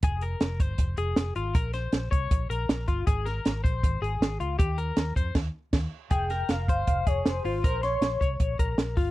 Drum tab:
CC |--------|--------|--------|----x-x-|
HH |xxxxxxxx|xxxxxxxx|xxxxxxxx|xxxx----|
SD |--o---o-|-oo---o-|-oo---o-|--o-o-o-|
BD |o--oo---|o--oo--o|o--oo---|o--oo-o-|

CC |--------|--------|
HH |xxxxxxxo|xxxxxxxo|
SD |-oo---o-|-oo---o-|
BD |o--ooo--|o--ooo-o|